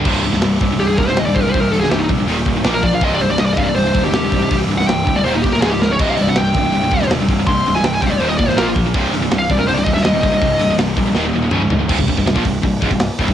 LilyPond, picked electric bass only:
\new Staff \with { instrumentName = "Picked electric bass" } { \clef bass \time 4/4 \key c \minor \tempo 4 = 162 c,,8 c,,8 c,,8 c,,8 c,,8 ees,,8 ees,,8 c,,8 | c,,8 c,,8 c,,8 bes,,8 ees,,8 c,,8 bes,,4 | c,,8 c,,8 c,,8 c,,8 c,,8 ees,,8 ees,,8 c,,8 | c,,8 c,,8 c,,8 d,,8 ees,,8 c,,8 des,,4 |
c,,8 c,,8 c,,8 c,,8 c,,8 ees,,8 ees,,8 c,,8 | c,,8 c,,8 c,,8 d,,8 ees,,8 c,,8 bes,,4 | c,,8 c,,8 c,,8 c,,8 c,,8 ees,,8 ees,,8 c,,8 | c,,8 c,,8 c,,8 bes,,8 ees,,8 ees,,8 des,,4 |
c,,16 c,,16 c,,16 c,,16 c,,16 bes,,16 c,,8 c,,8 des,,16 c,,8 r16 c,,16 c,,16 | }